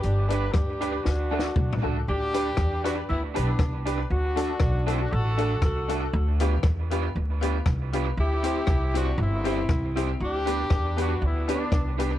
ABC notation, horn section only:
X:1
M:4/4
L:1/16
Q:"Swing" 1/4=118
K:D
V:1 name="Horn section"
[DG]2 [GB]2 [DG]4 [DF]6 z2 | [K:G] [DG]6 [DF]2 [B,E]2 [B,D]4 z2 | [DF]6 [CE] [DF] [FA]4 [FA]3 z | z16 |
[EG]6 [DF]2 [CE]6 z2 | [DG]6 [DF]2 [B,E]2 [B,D]4 z2 |]